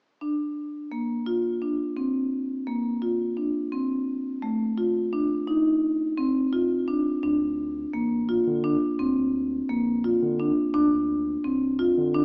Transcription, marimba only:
0.21 D4
0.92 A#3
1.26 F4
1.62 D4
1.97 C4
2.67 A#3
3.02 F4
3.37 D4
3.72 C4
4.42 A3
4.78 F4
5.13 D4
5.47 D#4
6.18 C4
6.53 F4
6.88 D4
7.23 D4
7.94 A#3
8.29 F4
8.64 D4
8.99 C4
9.69 A#3
10.04 F4
10.40 D4
10.74 D4
11.44 C4
11.79 F4
12.14 D4

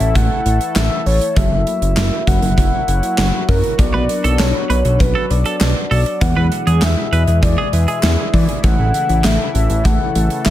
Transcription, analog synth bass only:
0.00 A1
0.15 A1
0.46 A1
0.76 A1
1.06 A1
1.36 F#1
1.51 F#1
1.82 F#1
1.97 F#1
2.27 F#1
2.42 F#1
2.58 F#1
2.88 F#1
3.18 F#1
3.49 F#2
3.79 B1
3.94 B1
4.24 B1
4.39 B1
4.70 B1
4.85 B1
5.00 B1
5.30 B1
5.61 B1
5.91 B1
6.21 E2
6.37 E2
6.67 E2
6.82 E2
7.12 E2
7.28 E2
7.43 E2
7.73 E2
8.03 E2
8.34 E3
8.64 A1
8.79 A1
9.09 A1
9.24 A1
9.55 A1
9.70 A1
9.85 A1
10.15 A1
10.46 A1

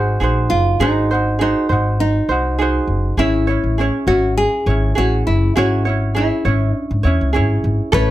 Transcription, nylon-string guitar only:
Already playing: G#4
0.50 F4
0.81 D#4
1.41 D#4
2.00 D#4
3.19 E4
4.07 F#4
4.38 G#4
4.98 F#4
5.27 E4
5.57 F#4
6.16 E4
6.77 D4
7.94 B4

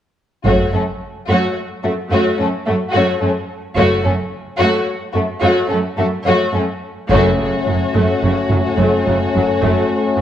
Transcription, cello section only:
0.46 F#2
0.74 F#2
1.29 F#2
1.84 F#2
2.12 F#2
2.40 F#2
2.67 F#2
2.95 F#2
3.22 F#2
3.77 F#2
4.05 F#2
4.59 F#2
5.15 F#2
5.42 F#2
5.70 F#2
5.98 F#2
6.26 F#2
6.54 F#2
7.11 F#2
7.38 F#2
7.67 F#2
7.95 F#2
8.23 F#2
8.50 F#2
8.77 F#2
9.06 F#2
9.34 F#2
9.62 F#2
10.18 F#2

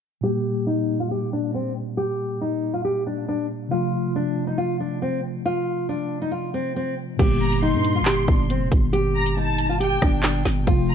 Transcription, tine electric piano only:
0.21 A#2 G3
0.25 A#3 G4
3.69 C3 F3
3.73 A3 F4
7.17 A#2 G3
7.21 A#3 G4
10.64 C3 F3
10.68 A3 F4

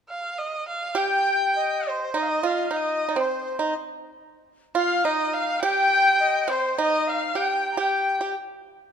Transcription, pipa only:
0.95 G4
2.14 D#4
2.43 F4
2.71 D#4
3.08 D#4
3.16 C4
3.59 D#4
4.75 F4
5.05 D#4
5.63 G4
6.48 C4
6.78 D#4
7.35 G4
7.77 G4
8.21 G4

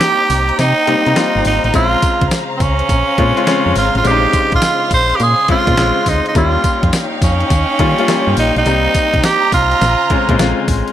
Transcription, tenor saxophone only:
Already playing: G4
0.60 D#4
1.46 D#4
1.65 D#4
1.75 F4
2.57 C4
2.62 C#4
3.78 F4
3.97 F4
4.07 G4
4.55 F4
4.94 C5
5.16 G4
5.22 G#4
5.51 F4
6.09 D#4
6.28 D#4
6.37 F4
7.24 C#4
8.39 D#4
8.57 D#4
9.25 G4
9.54 F4

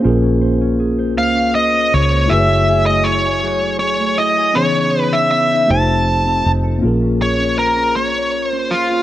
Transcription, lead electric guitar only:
1.18 F5
1.55 D#5
1.94 C#5
2.30 E5
2.86 D#5
3.04 C#5
3.79 C#5
4.18 D#5
4.55 C#5
5.01 B4
5.13 E5
5.31 E5
5.71 A5
7.22 C#5
7.59 A#4
7.96 C#5
8.50 C5
8.71 F4

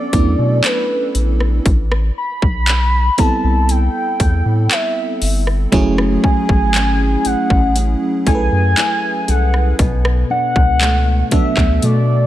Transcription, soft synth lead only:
Already playing: D5
0.65 B4
2.18 B5
3.19 A5
3.70 G5
4.72 E5
6.24 G#5
7.26 F#5
8.27 G#5
9.29 F#5
10.31 F#5
11.33 E5
11.84 D5

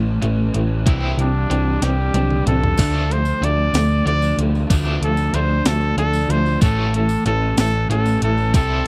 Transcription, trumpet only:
1.21 D4
1.84 G4
2.48 A4
3.12 C5
3.45 D5
4.07 D5
5.04 A4
5.35 C5
5.67 A4
5.99 A4
6.31 C5
6.63 A4
6.96 A4
7.26 A4
7.60 A4
7.91 A4
8.24 A4
8.55 A4

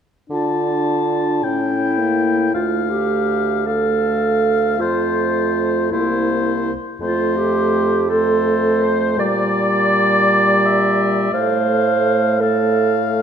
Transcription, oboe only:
0.33 A5
1.44 G5
2.54 F5
3.68 F5
4.81 C5
5.92 C5
7.02 C5
8.10 C5
9.20 D5
10.65 E5
11.34 F5
12.42 F5

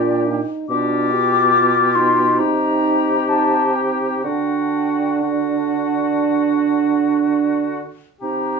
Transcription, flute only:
Already playing: D5
0.69 D6
1.95 C6
2.39 A#5
3.29 A5
3.75 G5
4.23 G5
5.21 F#5
8.22 A#5

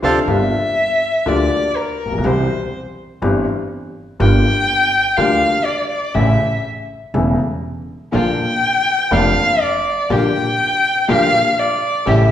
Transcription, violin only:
0.03 F5
0.28 E5
1.28 D5
1.76 A#4
2.26 C5
4.21 G5
5.17 F5
5.64 D5
5.89 D5
6.14 E5
8.15 G5
9.13 F5
9.61 D5
10.11 G5
11.10 F5
11.59 D5
12.07 E5

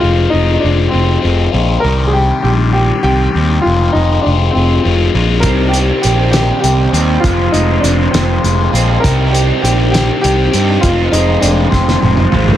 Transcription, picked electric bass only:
0.03 F1
0.33 F1
0.64 F1
0.93 F1
1.24 F1
1.54 A#1
1.84 C2
2.44 A#1
3.04 C2
3.35 D#2
3.66 F1
3.95 F1
4.26 F1
4.55 F1
4.85 F1
5.14 A#1
5.43 C2
6.05 A#1
6.63 C2
6.93 D#2
7.24 F1
7.53 F1
7.83 F1
8.14 F1
8.44 F1
8.73 A#1
9.04 C2
9.63 A#1
10.24 C2
10.54 G2
10.83 F1
11.12 F1
11.43 F1
11.72 F1
12.02 F1
12.34 G#1

